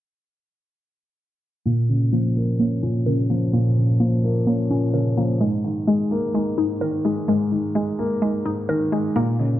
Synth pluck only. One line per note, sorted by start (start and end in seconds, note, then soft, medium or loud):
1.66 2.11 A#3 loud
2.13 2.58 A#3 medium
2.59 3.29 A#3 medium
2.83 4.24 C#4 medium
3.06 4.47 A#4 medium
3.30 3.52 A#3 medium
3.53 3.99 A#3 medium
4.00 4.46 A#3 medium
4.47 5.16 A#3 medium
4.70 5.41 C#4 medium
4.94 5.41 A#4 medium
5.17 5.41 A#3 medium
5.41 5.86 G#3 medium
5.87 6.33 G#3 medium
6.34 7.04 G#3 medium
6.58 7.98 D#4 medium
6.81 8.22 A#4 medium
7.05 7.27 G#3 medium
7.28 7.74 G#3 medium
7.75 8.21 G#3 medium
8.22 8.91 G#3 medium
8.45 9.16 D#4 medium
8.69 9.16 A#4 medium
8.92 9.16 G#3 medium
9.16 9.60 A#3 loud